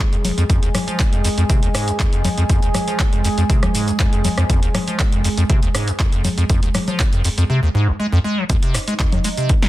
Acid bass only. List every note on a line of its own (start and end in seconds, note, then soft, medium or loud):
0.13 0.17 F2 medium
0.25 0.32 F1 medium
0.38 0.44 F2 loud
0.49 0.60 F2 loud
0.62 0.69 D#2 medium
0.74 0.79 G#2 medium
0.88 1.01 F3 medium
0.99 1.04 F2 medium
1.13 1.22 F2 medium
1.24 1.29 F2 loud
1.38 1.44 F2 loud
1.50 1.60 C3 loud
1.63 1.69 D#2 medium
1.74 1.89 G#2 medium
1.88 1.92 F2 loud
2.00 2.07 F2 medium
2.13 2.23 F2 medium
2.25 2.29 F2 loud
2.38 2.44 F2 loud
2.50 2.60 F2 loud
2.63 2.69 D#2 medium
2.75 2.79 G#2 medium
2.88 3.01 F3 medium
3.00 3.04 F2 medium
3.13 3.22 F2 medium
3.25 3.29 F2 loud
3.38 3.44 F2 loud
3.50 3.60 C3 loud
3.63 3.69 D#2 medium
3.74 3.89 G#2 medium
3.88 3.92 F2 loud
4.00 4.07 F2 medium
4.13 4.23 F2 medium
4.25 4.29 F2 loud
4.38 4.44 F2 loud
4.50 4.60 F2 loud
4.63 4.69 D#2 medium
4.75 4.79 G#2 medium
4.88 5.01 F3 medium
4.99 5.04 F2 medium
5.13 5.22 F2 medium
5.24 5.29 F2 loud
5.37 5.44 F2 loud
5.49 5.60 C3 loud
5.63 5.69 D#2 medium
5.75 5.89 G#2 medium
5.88 5.92 F2 loud
5.99 6.07 F2 medium
6.13 6.23 F2 medium
6.24 6.29 F2 loud
6.38 6.44 F2 loud
6.50 6.60 F2 loud
6.63 6.69 D#2 medium
6.75 6.79 G#2 medium
6.88 7.01 F3 medium
7.00 7.04 F2 medium
7.13 7.23 F2 medium
7.25 7.29 F2 loud
7.38 7.44 F2 loud
7.50 7.60 C3 loud
7.63 7.69 D#2 medium
7.75 7.89 G#2 loud
7.88 7.92 F1 medium
8.00 8.07 G#3 medium
8.12 8.19 F2 loud
8.24 8.39 G#3 medium
8.37 8.44 F3 loud
8.49 8.57 F2 loud
8.62 8.76 C3 medium
8.74 8.79 F2 loud
8.88 8.94 G#3 medium
8.99 9.07 F2 medium
9.13 9.19 F2 medium
9.25 9.29 G#3 loud
9.37 9.51 C3 medium
9.49 9.54 F2 loud
9.62 9.69 C3 medium